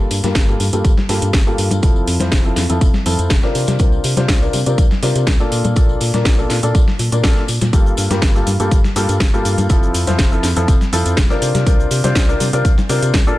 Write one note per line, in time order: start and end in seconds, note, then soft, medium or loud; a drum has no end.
0.00 0.21 G2 medium
0.00 0.21 A#3 medium
0.00 0.21 F4 medium
0.00 0.21 G4 medium
0.00 0.21 A4 medium
0.11 0.21 G2 loud
0.11 closed hi-hat medium
0.11 open hi-hat loud
0.11 tambourine medium
0.23 0.33 G2 medium
0.23 0.45 G2 medium
0.23 0.45 A#3 medium
0.23 0.45 F4 medium
0.23 0.45 G4 medium
0.23 0.45 A#4 medium
0.23 snare soft
0.23 closed hi-hat medium
0.23 tambourine soft
0.23 high conga medium
0.35 0.56 G1 loud
0.35 kick loud
0.35 snare loud
0.35 closed hi-hat medium
0.35 tambourine soft
0.48 0.64 G2 medium
0.48 0.64 A#3 medium
0.48 0.64 F4 medium
0.48 0.64 G4 medium
0.48 0.64 A4 medium
0.48 tambourine soft
0.60 0.71 G2 medium
0.60 open hi-hat medium
0.60 tambourine medium
0.73 0.82 G2 medium
0.73 0.89 G2 medium
0.73 0.89 A#3 medium
0.73 0.89 F4 medium
0.73 0.89 G4 medium
0.73 0.89 A4 loud
0.73 closed hi-hat medium
0.73 tambourine soft
0.85 0.95 G1 medium
0.85 kick loud
0.85 closed hi-hat medium
0.85 tambourine soft
0.98 snare soft
0.98 tambourine soft
0.98 high conga medium
1.09 1.35 G2 medium
1.09 1.20 G2 medium
1.09 1.35 A#3 medium
1.09 1.35 F4 medium
1.09 1.35 G4 medium
1.09 1.35 A4 medium
1.09 snare soft
1.09 closed hi-hat medium
1.09 open hi-hat loud
1.09 tambourine medium
1.22 1.32 G2 medium
1.22 closed hi-hat soft
1.22 closed hi-hat medium
1.22 tambourine soft
1.33 1.44 G1 loud
1.33 kick loud
1.33 snare loud
1.33 closed hi-hat medium
1.33 tambourine medium
1.33 high conga medium
1.46 1.80 G2 medium
1.46 1.80 A#3 medium
1.46 1.80 F4 medium
1.46 1.80 G4 medium
1.46 1.80 A4 loud
1.46 tambourine soft
1.58 1.69 G2 medium
1.58 closed hi-hat medium
1.58 open hi-hat medium
1.58 tambourine medium
1.71 1.81 G2 loud
1.71 closed hi-hat medium
1.71 tambourine soft
1.71 high conga medium
1.82 2.03 F1 loud
1.82 2.17 F3 medium
1.82 2.17 C4 medium
1.82 2.17 E4 medium
1.82 2.17 F4 medium
1.82 2.17 A4 medium
1.82 kick loud
1.82 closed hi-hat medium
1.82 tambourine medium
1.96 tambourine soft
2.07 2.18 F2 medium
2.07 closed hi-hat medium
2.07 open hi-hat loud
2.07 tambourine medium
2.20 2.30 F2 medium
2.20 2.42 F3 medium
2.20 2.42 C4 medium
2.20 2.42 E4 medium
2.20 2.42 F4 medium
2.20 2.42 C5 medium
2.20 snare soft
2.20 closed hi-hat medium
2.20 tambourine soft
2.20 high conga loud
2.31 2.52 F1 loud
2.31 kick loud
2.31 snare loud
2.31 closed hi-hat medium
2.31 tambourine medium
2.45 2.61 F3 medium
2.45 2.61 C4 medium
2.45 2.61 E4 medium
2.45 2.61 F4 medium
2.45 2.61 A4 medium
2.45 tambourine soft
2.56 2.67 F2 medium
2.56 snare medium
2.56 closed hi-hat medium
2.56 open hi-hat medium
2.56 tambourine loud
2.56 high conga medium
2.70 2.79 F2 medium
2.70 2.85 F3 medium
2.70 2.85 C4 medium
2.70 2.85 E4 medium
2.70 2.85 F4 medium
2.70 2.85 A4 loud
2.70 closed hi-hat medium
2.70 tambourine soft
2.81 2.92 F1 medium
2.81 kick loud
2.81 closed hi-hat medium
2.81 tambourine medium
2.94 snare soft
2.94 tambourine soft
2.94 high conga medium
3.06 3.16 F2 medium
3.06 3.32 F3 medium
3.06 3.32 C4 medium
3.06 3.32 E4 medium
3.06 3.32 F4 medium
3.06 3.32 A4 medium
3.06 closed hi-hat medium
3.06 open hi-hat loud
3.06 tambourine loud
3.19 3.28 F2 medium
3.19 closed hi-hat medium
3.19 tambourine soft
3.30 3.41 F1 loud
3.30 kick loud
3.30 snare loud
3.30 closed hi-hat medium
3.30 tambourine soft
3.30 high conga medium
3.43 3.77 C3 medium
3.43 3.77 C4 medium
3.43 3.77 D4 medium
3.43 3.77 F4 medium
3.43 3.77 A#4 loud
3.43 snare soft
3.43 tambourine soft
3.55 3.66 C3 medium
3.55 closed hi-hat medium
3.55 open hi-hat loud
3.55 tambourine medium
3.67 3.77 C3 loud
3.67 snare medium
3.67 closed hi-hat medium
3.67 tambourine soft
3.67 high conga loud
3.79 4.00 C2 loud
3.79 4.14 C3 medium
3.79 4.14 C4 medium
3.79 4.14 D4 medium
3.79 4.14 F4 medium
3.79 4.14 A#4 medium
3.79 kick loud
3.79 closed hi-hat medium
3.79 tambourine medium
3.92 tambourine soft
4.04 4.15 C3 loud
4.04 closed hi-hat medium
4.04 open hi-hat loud
4.04 tambourine loud
4.17 4.27 C3 medium
4.17 4.39 C3 medium
4.17 4.39 C4 medium
4.17 4.39 D4 medium
4.17 4.39 F4 medium
4.17 4.39 C5 medium
4.17 snare soft
4.17 closed hi-hat medium
4.17 tambourine soft
4.17 high conga loud
4.28 4.49 C2 loud
4.28 kick loud
4.28 snare loud
4.28 closed hi-hat medium
4.28 tambourine medium
4.42 4.58 C3 medium
4.42 4.58 C4 medium
4.42 4.58 D4 medium
4.42 4.58 F4 medium
4.42 4.58 A#4 medium
4.42 tambourine soft
4.53 4.64 C3 medium
4.53 closed hi-hat medium
4.53 open hi-hat loud
4.53 tambourine medium
4.53 high conga medium
4.66 4.76 C3 medium
4.66 4.82 C3 medium
4.66 4.82 C4 medium
4.66 4.82 D4 medium
4.66 4.82 F4 medium
4.66 4.82 A#4 loud
4.66 closed hi-hat medium
4.66 tambourine soft
4.78 4.89 C2 medium
4.78 kick loud
4.78 closed hi-hat medium
4.78 tambourine soft
4.91 snare soft
4.91 tambourine soft
4.91 high conga medium
5.03 5.13 C3 medium
5.03 5.29 C3 medium
5.03 5.29 C4 medium
5.03 5.29 D4 medium
5.03 5.29 F4 medium
5.03 5.29 A#4 medium
5.03 snare soft
5.03 closed hi-hat medium
5.03 open hi-hat loud
5.03 tambourine medium
5.16 5.25 C3 loud
5.16 closed hi-hat medium
5.16 closed hi-hat soft
5.16 tambourine soft
5.27 5.38 C2 loud
5.27 kick loud
5.27 snare loud
5.27 closed hi-hat medium
5.27 closed hi-hat soft
5.27 tambourine medium
5.27 high conga medium
5.40 5.74 A#2 medium
5.40 5.74 A#3 medium
5.40 5.74 D4 medium
5.40 5.74 F4 medium
5.40 5.74 A4 loud
5.40 tambourine soft
5.52 5.62 A#2 medium
5.52 closed hi-hat medium
5.52 open hi-hat loud
5.52 tambourine medium
5.64 5.74 A#2 loud
5.64 closed hi-hat medium
5.64 tambourine soft
5.64 high conga loud
5.76 5.97 A#1 loud
5.76 6.11 A#2 medium
5.76 6.11 A#3 medium
5.76 6.11 D4 medium
5.76 6.11 F4 medium
5.76 6.11 A4 medium
5.76 kick loud
5.76 closed hi-hat medium
5.76 tambourine medium
5.89 tambourine soft
6.01 6.12 A#2 loud
6.01 closed hi-hat medium
6.01 open hi-hat loud
6.01 tambourine medium
6.14 6.23 A#2 medium
6.14 6.35 A#2 medium
6.14 6.35 A#3 medium
6.14 6.35 D4 medium
6.14 6.35 F4 medium
6.14 6.35 A#4 medium
6.14 snare soft
6.14 closed hi-hat medium
6.14 tambourine soft
6.14 high conga medium
6.25 6.46 A#1 loud
6.25 kick loud
6.25 snare loud
6.25 closed hi-hat medium
6.25 tambourine medium
6.38 6.54 A#2 medium
6.38 6.54 A#3 medium
6.38 6.54 D4 medium
6.38 6.54 F4 medium
6.38 6.54 A4 medium
6.38 tambourine soft
6.50 6.61 A#2 medium
6.50 snare medium
6.50 closed hi-hat medium
6.50 open hi-hat medium
6.50 tambourine medium
6.63 6.73 A#2 medium
6.63 6.79 A#2 medium
6.63 6.79 A#3 medium
6.63 6.79 D4 medium
6.63 6.79 F4 medium
6.63 6.79 A4 loud
6.63 closed hi-hat medium
6.63 tambourine soft
6.75 6.85 A#1 medium
6.75 kick loud
6.75 closed hi-hat medium
6.75 closed hi-hat soft
6.75 tambourine medium
6.88 snare soft
6.88 tambourine soft
6.88 high conga medium
6.99 7.10 A#2 medium
6.99 closed hi-hat medium
6.99 open hi-hat loud
6.99 tambourine medium
7.12 7.22 A#2 medium
7.12 7.21 A#2 medium
7.12 7.21 A#3 medium
7.12 7.21 D4 medium
7.12 7.21 F4 medium
7.12 7.21 A#4 medium
7.12 closed hi-hat medium
7.12 tambourine soft
7.24 7.34 A#1 loud
7.24 7.41 A#2 medium
7.24 7.41 A#3 medium
7.24 7.41 D4 medium
7.24 7.41 F4 medium
7.24 7.41 A4 loud
7.24 kick loud
7.24 snare loud
7.24 closed hi-hat medium
7.24 closed hi-hat soft
7.24 tambourine soft
7.24 high conga medium
7.37 snare soft
7.37 tambourine soft
7.48 7.59 A#2 medium
7.48 closed hi-hat medium
7.48 open hi-hat loud
7.48 tambourine loud
7.61 7.71 A#2 loud
7.61 snare medium
7.61 closed hi-hat medium
7.61 tambourine soft
7.61 high conga medium
7.73 7.93 G1 loud
7.73 8.08 G2 medium
7.73 8.08 A#3 medium
7.73 8.08 F4 medium
7.73 8.08 G4 medium
7.73 8.08 A4 medium
7.73 kick loud
7.73 closed hi-hat medium
7.73 closed hi-hat soft
7.73 tambourine medium
7.73 cabasa soft
7.86 tambourine soft
7.86 cabasa soft
7.97 8.08 G2 loud
7.97 closed hi-hat medium
7.97 open hi-hat loud
7.97 tambourine medium
7.97 cabasa medium
8.11 8.32 G2 medium
8.11 8.20 G2 medium
8.11 8.32 A#3 medium
8.11 8.32 F4 medium
8.11 8.32 G4 medium
8.11 8.32 A#4 medium
8.11 snare soft
8.11 closed hi-hat medium
8.11 tambourine soft
8.11 high conga medium
8.11 cabasa soft
8.22 8.43 G1 loud
8.22 kick loud
8.22 snare loud
8.22 closed hi-hat medium
8.22 tambourine soft
8.22 cabasa soft
8.35 8.51 G2 medium
8.35 8.51 A#3 medium
8.35 8.51 F4 medium
8.35 8.51 G4 medium
8.35 8.51 A4 medium
8.35 tambourine soft
8.35 cabasa soft
8.47 8.57 G2 medium
8.47 open hi-hat medium
8.47 tambourine medium
8.47 high conga medium
8.47 cabasa medium
8.60 8.69 G2 medium
8.60 8.76 G2 medium
8.60 8.76 A#3 medium
8.60 8.76 F4 medium
8.60 8.76 G4 medium
8.60 8.76 A4 loud
8.60 closed hi-hat medium
8.60 tambourine soft
8.60 cabasa soft
8.71 8.82 G1 medium
8.71 kick loud
8.71 closed hi-hat soft
8.71 closed hi-hat medium
8.71 tambourine medium
8.71 cabasa soft
8.84 snare soft
8.84 tambourine soft
8.84 high conga medium
8.84 cabasa soft
8.96 9.07 G2 loud
8.96 9.22 G2 medium
8.96 9.22 A#3 medium
8.96 9.22 F4 medium
8.96 9.22 G4 medium
8.96 9.22 A4 medium
8.96 snare soft
8.96 closed hi-hat medium
8.96 open hi-hat loud
8.96 tambourine medium
8.96 cabasa medium
9.09 9.18 G2 medium
9.09 closed hi-hat medium
9.09 closed hi-hat soft
9.09 tambourine soft
9.09 cabasa soft
9.20 9.31 G1 medium
9.20 kick loud
9.20 snare loud
9.20 closed hi-hat medium
9.20 closed hi-hat soft
9.20 tambourine soft
9.20 high conga medium
9.20 cabasa soft
9.34 9.67 G2 medium
9.34 9.67 A#3 medium
9.34 9.67 F4 medium
9.34 9.67 G4 medium
9.34 9.67 A4 loud
9.34 tambourine soft
9.34 cabasa soft
9.45 9.56 G2 medium
9.45 closed hi-hat medium
9.45 open hi-hat medium
9.45 tambourine medium
9.45 cabasa medium
9.58 9.68 G2 loud
9.58 closed hi-hat medium
9.58 tambourine soft
9.58 high conga medium
9.58 cabasa soft
9.69 9.90 F1 loud
9.69 10.04 F3 medium
9.69 10.04 C4 medium
9.69 10.04 E4 medium
9.69 10.04 F4 medium
9.69 10.04 A4 medium
9.69 kick loud
9.69 closed hi-hat medium
9.69 tambourine medium
9.69 cabasa soft
9.83 tambourine soft
9.83 cabasa soft
9.94 10.05 F2 loud
9.94 closed hi-hat medium
9.94 open hi-hat loud
9.94 tambourine medium
9.94 cabasa medium
10.07 10.17 F2 medium
10.07 10.29 F3 medium
10.07 10.29 C4 medium
10.07 10.29 E4 medium
10.07 10.29 F4 medium
10.07 10.29 C5 medium
10.07 snare soft
10.07 closed hi-hat medium
10.07 tambourine soft
10.07 high conga medium
10.07 cabasa soft
10.19 10.39 F1 loud
10.19 kick loud
10.19 snare loud
10.19 closed hi-hat medium
10.19 tambourine soft
10.19 cabasa soft
10.32 10.48 F3 medium
10.32 10.48 C4 medium
10.32 10.48 E4 medium
10.32 10.48 F4 medium
10.32 10.48 A4 medium
10.32 tambourine soft
10.32 cabasa soft
10.43 10.54 F2 medium
10.43 snare medium
10.43 closed hi-hat medium
10.43 open hi-hat medium
10.43 tambourine medium
10.43 cabasa medium
10.56 10.66 F2 medium
10.56 10.72 F3 medium
10.56 10.72 C4 medium
10.56 10.72 E4 medium
10.56 10.72 F4 medium
10.56 10.72 A4 loud
10.56 closed hi-hat medium
10.56 tambourine soft
10.56 cabasa soft
10.68 10.79 F1 medium
10.68 kick loud
10.68 closed hi-hat medium
10.68 tambourine medium
10.68 cabasa soft
10.81 snare soft
10.81 tambourine soft
10.81 high conga medium
10.81 cabasa soft
10.93 11.03 F2 medium
10.93 11.19 F3 medium
10.93 11.19 C4 medium
10.93 11.19 E4 medium
10.93 11.19 F4 medium
10.93 11.19 A4 medium
10.93 closed hi-hat medium
10.93 open hi-hat loud
10.93 tambourine medium
10.93 cabasa medium
11.06 11.15 F2 loud
11.06 closed hi-hat medium
11.06 tambourine soft
11.06 cabasa soft
11.17 11.28 F1 loud
11.17 kick loud
11.17 snare loud
11.17 closed hi-hat medium
11.17 tambourine soft
11.17 high conga medium
11.17 cabasa soft
11.30 11.64 C3 medium
11.30 11.64 C4 medium
11.30 11.64 D4 medium
11.30 11.64 F4 medium
11.30 11.64 A#4 loud
11.30 snare soft
11.30 tambourine soft
11.30 cabasa soft
11.42 11.52 C3 medium
11.42 closed hi-hat medium
11.42 open hi-hat medium
11.42 tambourine medium
11.42 cabasa medium
11.55 11.64 C3 loud
11.55 snare medium
11.55 closed hi-hat medium
11.55 tambourine soft
11.55 high conga medium
11.55 cabasa soft
11.67 11.87 C2 loud
11.67 12.01 C3 medium
11.67 12.01 C4 medium
11.67 12.01 D4 medium
11.67 12.01 F4 medium
11.67 12.01 A#4 medium
11.67 kick loud
11.67 closed hi-hat medium
11.67 tambourine soft
11.67 cabasa soft
11.80 tambourine soft
11.80 cabasa soft
11.91 12.02 C3 loud
11.91 closed hi-hat medium
11.91 open hi-hat loud
11.91 tambourine medium
11.91 cabasa medium
12.04 12.14 C3 medium
12.04 12.26 C3 medium
12.04 12.26 C4 medium
12.04 12.26 D4 medium
12.04 12.26 F4 medium
12.04 12.26 C5 medium
12.04 snare soft
12.04 closed hi-hat medium
12.04 tambourine soft
12.04 high conga medium
12.04 cabasa soft
12.15 12.36 C2 loud
12.15 kick loud
12.15 snare loud
12.15 closed hi-hat medium
12.15 tambourine soft
12.15 cabasa soft
12.29 12.44 C3 medium
12.29 12.44 C4 medium
12.29 12.44 D4 medium
12.29 12.44 F4 medium
12.29 12.44 A#4 medium
12.29 tambourine soft
12.29 cabasa soft
12.40 12.51 C3 medium
12.40 closed hi-hat medium
12.40 open hi-hat medium
12.40 tambourine medium
12.40 high conga medium
12.40 cabasa medium
12.53 12.69 C3 medium
12.53 12.63 C3 medium
12.53 12.69 C4 medium
12.53 12.69 D4 medium
12.53 12.69 F4 medium
12.53 12.69 A#4 loud
12.53 closed hi-hat medium
12.53 tambourine soft
12.53 cabasa soft
12.65 12.75 C2 medium
12.65 kick loud
12.65 closed hi-hat medium
12.65 tambourine soft
12.65 cabasa soft
12.78 snare soft
12.78 tambourine soft
12.78 high conga medium
12.78 cabasa soft
12.89 13.00 C3 loud
12.89 13.15 C3 medium
12.89 13.15 C4 medium
12.89 13.15 D4 medium
12.89 13.15 F4 medium
12.89 13.15 A#4 medium
12.89 snare soft
12.89 closed hi-hat medium
12.89 open hi-hat loud
12.89 tambourine medium
12.89 cabasa medium
13.02 13.12 C3 loud
13.02 closed hi-hat soft
13.02 closed hi-hat medium
13.02 tambourine soft
13.02 cabasa soft
13.14 13.25 C2 loud
13.14 kick loud
13.14 snare loud
13.14 closed hi-hat medium
13.14 tambourine medium
13.14 high conga medium
13.14 cabasa soft
13.27 13.38 A#2 medium
13.27 13.38 A#3 medium
13.27 13.38 D4 medium
13.27 13.38 F4 medium
13.27 13.38 A4 loud
13.27 tambourine soft
13.27 cabasa soft